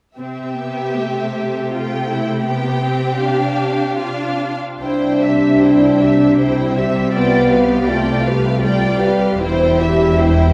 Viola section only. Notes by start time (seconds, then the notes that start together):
0.18 C4
0.58 B3
0.98 A3
1.37 A3
2.46 B3
2.84 C4
3.21 D4
3.99 D4
4.81 E4
5.23 G4
5.62 E4
6.01 G4
6.39 E4
6.76 G4
7.13 F4
7.51 G4
7.88 F4
8.25 G4
8.62 F4
9.02 G4
9.42 E4
9.80 G4
10.17 E4